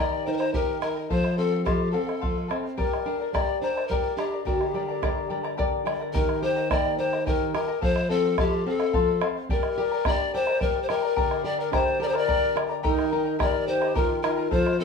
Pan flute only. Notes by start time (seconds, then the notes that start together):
0.00 D5
0.26 C5
0.33 A#4
0.37 C5
0.54 A#4
0.81 A#4
1.11 C5
1.38 A4
1.65 G4
1.91 A4
2.79 A#4
3.33 D5
3.62 C5
3.88 A#4
4.17 G4
4.45 F#4
4.62 G4
6.14 A#4
6.43 C5
6.71 D5
6.98 C5
7.27 A#4
7.55 A#4
7.83 C5
8.10 A4
8.40 G4
8.68 A4
9.52 A#4
10.07 D5
10.35 C5
10.62 A#4
10.83 C5
10.89 A#4
11.45 D5
11.60 A#4
11.73 C5
12.03 D5
12.08 C5
12.17 D5
12.84 A#4
13.41 D5
13.68 C5
13.95 A#4
14.22 A#4
14.52 C5
14.80 A4